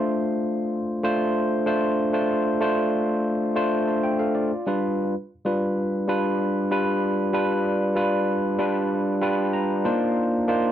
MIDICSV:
0, 0, Header, 1, 2, 480
1, 0, Start_track
1, 0, Tempo, 630252
1, 69, Time_signature, 4, 2, 24, 8
1, 8164, End_track
2, 0, Start_track
2, 0, Title_t, "Tine electric piano"
2, 0, Program_c, 0, 4
2, 0, Control_c, 0, 64, 127
2, 0, Note_on_c, 0, 57, 84
2, 0, Note_on_c, 0, 62, 73
2, 0, Note_on_c, 0, 65, 70
2, 0, Note_on_c, 0, 72, 82
2, 0, Note_on_c, 0, 84, 67
2, 598, Note_off_c, 0, 57, 0
2, 599, Note_off_c, 0, 62, 0
2, 602, Note_off_c, 0, 65, 0
2, 602, Note_off_c, 0, 72, 0
2, 786, Note_on_c, 0, 57, 82
2, 789, Note_on_c, 0, 62, 69
2, 793, Note_on_c, 0, 65, 78
2, 796, Note_on_c, 0, 72, 95
2, 1081, Note_off_c, 0, 57, 0
2, 1083, Note_off_c, 0, 62, 0
2, 1084, Note_off_c, 0, 65, 0
2, 1086, Note_off_c, 0, 72, 0
2, 1263, Note_on_c, 0, 57, 74
2, 1264, Note_on_c, 0, 62, 71
2, 1269, Note_on_c, 0, 65, 65
2, 1273, Note_on_c, 0, 72, 86
2, 1487, Note_off_c, 0, 57, 0
2, 1487, Note_off_c, 0, 62, 0
2, 1490, Note_off_c, 0, 65, 0
2, 1492, Note_off_c, 0, 72, 0
2, 1621, Note_on_c, 0, 57, 66
2, 1626, Note_on_c, 0, 62, 67
2, 1628, Note_on_c, 0, 65, 68
2, 1631, Note_on_c, 0, 72, 75
2, 1846, Note_off_c, 0, 57, 0
2, 1848, Note_off_c, 0, 62, 0
2, 1850, Note_off_c, 0, 65, 0
2, 1851, Note_off_c, 0, 72, 0
2, 1983, Note_on_c, 0, 57, 80
2, 1987, Note_on_c, 0, 62, 81
2, 1989, Note_on_c, 0, 65, 76
2, 1993, Note_on_c, 0, 72, 97
2, 2427, Note_off_c, 0, 57, 0
2, 2428, Note_off_c, 0, 62, 0
2, 2430, Note_off_c, 0, 65, 0
2, 2432, Note_off_c, 0, 72, 0
2, 2706, Note_on_c, 0, 57, 77
2, 2710, Note_on_c, 0, 62, 77
2, 2712, Note_on_c, 0, 65, 70
2, 2715, Note_on_c, 0, 72, 84
2, 2948, Note_off_c, 0, 72, 0
2, 2950, Note_on_c, 0, 81, 53
2, 2953, Note_off_c, 0, 65, 0
2, 2957, Note_on_c, 0, 72, 46
2, 3002, Note_off_c, 0, 57, 0
2, 3004, Note_off_c, 0, 62, 0
2, 3066, Note_off_c, 0, 81, 0
2, 3069, Note_off_c, 0, 72, 0
2, 3073, Note_on_c, 0, 79, 64
2, 3187, Note_off_c, 0, 79, 0
2, 3193, Note_on_c, 0, 77, 65
2, 3195, Note_on_c, 0, 69, 54
2, 3307, Note_off_c, 0, 77, 0
2, 3308, Note_off_c, 0, 69, 0
2, 3311, Note_on_c, 0, 74, 59
2, 3317, Note_on_c, 0, 65, 50
2, 3442, Control_c, 0, 64, 0
2, 3448, Note_off_c, 0, 84, 0
2, 3540, Note_off_c, 0, 74, 0
2, 3543, Note_off_c, 0, 65, 0
2, 3552, Note_on_c, 0, 55, 75
2, 3554, Note_on_c, 0, 62, 66
2, 3557, Note_on_c, 0, 65, 65
2, 3561, Note_on_c, 0, 71, 78
2, 3593, Control_c, 0, 64, 127
2, 3772, Note_off_c, 0, 55, 0
2, 3773, Note_off_c, 0, 62, 0
2, 3774, Note_off_c, 0, 65, 0
2, 3777, Note_off_c, 0, 71, 0
2, 3922, Control_c, 0, 64, 0
2, 4066, Control_c, 0, 64, 127
2, 4150, Note_on_c, 0, 55, 72
2, 4156, Note_on_c, 0, 65, 67
2, 4157, Note_on_c, 0, 62, 64
2, 4158, Note_on_c, 0, 71, 79
2, 4444, Note_off_c, 0, 55, 0
2, 4447, Note_off_c, 0, 62, 0
2, 4447, Note_off_c, 0, 65, 0
2, 4448, Note_off_c, 0, 71, 0
2, 4629, Note_on_c, 0, 55, 75
2, 4634, Note_on_c, 0, 62, 71
2, 4634, Note_on_c, 0, 65, 70
2, 4640, Note_on_c, 0, 71, 88
2, 4923, Note_off_c, 0, 55, 0
2, 4926, Note_off_c, 0, 62, 0
2, 4926, Note_off_c, 0, 65, 0
2, 4929, Note_off_c, 0, 71, 0
2, 5109, Note_on_c, 0, 55, 80
2, 5113, Note_on_c, 0, 65, 72
2, 5114, Note_on_c, 0, 62, 68
2, 5118, Note_on_c, 0, 71, 86
2, 5403, Note_off_c, 0, 55, 0
2, 5405, Note_off_c, 0, 65, 0
2, 5406, Note_off_c, 0, 62, 0
2, 5408, Note_off_c, 0, 71, 0
2, 5584, Note_on_c, 0, 55, 81
2, 5587, Note_on_c, 0, 65, 70
2, 5589, Note_on_c, 0, 62, 70
2, 5593, Note_on_c, 0, 71, 88
2, 5880, Note_off_c, 0, 55, 0
2, 5882, Note_off_c, 0, 65, 0
2, 5883, Note_off_c, 0, 62, 0
2, 5885, Note_off_c, 0, 71, 0
2, 6056, Note_on_c, 0, 55, 73
2, 6062, Note_on_c, 0, 62, 74
2, 6064, Note_on_c, 0, 65, 70
2, 6066, Note_on_c, 0, 71, 87
2, 6356, Note_off_c, 0, 55, 0
2, 6359, Note_off_c, 0, 62, 0
2, 6360, Note_off_c, 0, 65, 0
2, 6361, Note_off_c, 0, 71, 0
2, 6538, Note_on_c, 0, 55, 82
2, 6541, Note_on_c, 0, 62, 77
2, 6545, Note_on_c, 0, 65, 69
2, 6549, Note_on_c, 0, 71, 86
2, 6837, Note_off_c, 0, 55, 0
2, 6838, Note_off_c, 0, 62, 0
2, 6840, Note_off_c, 0, 65, 0
2, 6842, Note_off_c, 0, 71, 0
2, 7016, Note_on_c, 0, 55, 78
2, 7020, Note_on_c, 0, 62, 73
2, 7020, Note_on_c, 0, 79, 65
2, 7021, Note_on_c, 0, 65, 71
2, 7028, Note_on_c, 0, 71, 86
2, 7248, Note_off_c, 0, 79, 0
2, 7260, Note_on_c, 0, 82, 70
2, 7315, Note_off_c, 0, 55, 0
2, 7317, Note_off_c, 0, 62, 0
2, 7318, Note_off_c, 0, 65, 0
2, 7321, Note_off_c, 0, 71, 0
2, 7499, Note_on_c, 0, 58, 75
2, 7500, Note_on_c, 0, 62, 78
2, 7503, Note_on_c, 0, 63, 71
2, 7504, Note_on_c, 0, 65, 70
2, 7507, Note_on_c, 0, 72, 90
2, 7519, Control_c, 0, 64, 0
2, 7636, Control_c, 0, 64, 127
2, 7714, Note_off_c, 0, 82, 0
2, 7888, Note_off_c, 0, 58, 0
2, 7888, Note_off_c, 0, 62, 0
2, 7889, Note_off_c, 0, 63, 0
2, 7890, Note_off_c, 0, 65, 0
2, 7892, Note_off_c, 0, 72, 0
2, 7980, Note_on_c, 0, 58, 75
2, 7980, Note_on_c, 0, 62, 73
2, 7986, Note_on_c, 0, 63, 68
2, 7987, Note_on_c, 0, 65, 74
2, 7989, Note_on_c, 0, 72, 81
2, 8164, Note_off_c, 0, 58, 0
2, 8164, Note_off_c, 0, 62, 0
2, 8164, Note_off_c, 0, 63, 0
2, 8164, Note_off_c, 0, 65, 0
2, 8164, Note_off_c, 0, 72, 0
2, 8164, End_track
0, 0, End_of_file